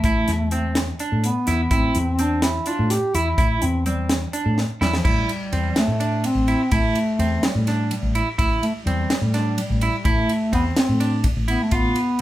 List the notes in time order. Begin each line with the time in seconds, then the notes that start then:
Already playing: A3
0.03 A1 E4, kick, closed hi-hat
0.28 E2, snare, closed hi-hat
0.51 C4, closed hi-hat
0.75 snare, closed hi-hat
0.99 D4, closed hi-hat
1.12 A2
1.24 B3, closed hi-hat
1.47 E2 E4, snare, closed hi-hat
1.71 A1 C4 E4, kick, closed hi-hat
1.95 E2, closed hi-hat
2.19 C4 D4, closed hi-hat
2.42 E4, snare, closed hi-hat
2.66 D4 F4, closed hi-hat
2.79 A2
2.90 G4, snare, closed hi-hat
3.14 E2 E4, closed hi-hat
3.38 A1 E4, kick, closed hi-hat
3.62 E2 C4, closed hi-hat
3.86 G3 C4, closed hi-hat
4.09 snare, closed hi-hat
4.33 D4, closed hi-hat
4.46 A2
4.58 snare
4.81 E2 G3 E4, snare
4.93 F3, snare
5.05 A1 G3 E4, kick, crash
5.29 ride
5.53 E2 C4, ride
5.76 A3, snare, ride
5.88 A2
6.00 D4, ride
6.24 C4, ride
6.35 A1
6.48 E4, ride
6.71 A1 A3 E4, kick, ride
6.95 ride
7.19 E2 C4, ride
7.43 G3, snare, ride
7.55 A2
7.67 D4, snare, ride
7.90 G3, ride
8.03 A1
8.15 E4, ride
8.38 A1 E4, kick, ride
8.63 A3, ride
8.86 E2 G3 C4, ride
9.10 snare, ride
9.22 A2
9.34 D4, snare, ride
9.57 G3, ride
9.70 A1
9.81 E4, ride
10.05 A1 A3 E4, kick, ride
10.29 ride
10.53 E2 B3 C4, kick, ride
10.77 C4, snare, ride
10.89 A2
11.00 D4, ride
11.24 kick, ride
11.37 A1
11.48 B3 E4, ride
11.63 A3
11.71 A1 B3 F4, kick, ride
11.96 ride